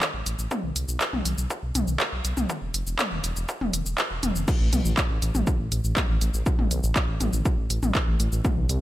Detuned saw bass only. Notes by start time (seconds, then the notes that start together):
0.14 A1
0.26 A1
0.39 A1
0.64 B1
0.76 C2
0.89 B1
1.13 B1
1.26 B1
1.38 B1
1.63 B1
1.75 B1
1.88 B1
2.12 B1
2.25 B1
2.37 B1
2.62 E1
2.74 F1
2.87 E1
3.12 E1
3.24 E1
3.36 E1
3.61 E1
3.73 E1
3.86 E1
4.11 E1
4.23 E1
4.36 F1
4.60 A1
4.73 B1
4.85 A1
5.10 A1
5.22 A1
5.35 A1
5.60 A1
5.72 A1
5.84 A1
6.09 A1
6.21 A1
6.34 A1
6.59 A1
6.71 B1
6.84 A1
7.08 A1
7.21 A1
7.33 A1
7.58 A1
7.70 A1
7.83 A1
8.08 A1
8.20 A1
8.32 A1
8.57 B1
8.69 C2